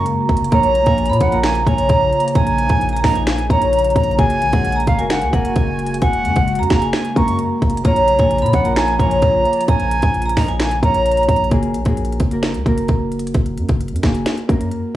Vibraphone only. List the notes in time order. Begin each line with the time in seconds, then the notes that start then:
Already playing: A#5
0.52 A#5
0.86 G#5
1.10 B5
1.32 A#5
1.44 A#5
1.67 G#5
1.90 A#5
2.36 A#5
2.70 G#5
2.93 A#5
3.16 G#5
3.27 G#5
3.50 A#5
4.19 G#5
4.53 F#5
4.76 A#5
4.99 G#5
5.10 G#5
5.33 F#5
5.56 G#5
6.02 G#5
6.36 F#5
6.59 A#5
6.82 G#5
6.93 G#5
7.16 A#5
7.85 A#5
8.19 G#5
8.42 B5
8.65 A#5
8.77 A#5
8.99 G#5
9.22 A#5
9.68 A#5
10.02 G#5
10.26 A#5
10.49 G#5
10.60 G#5
10.83 A#5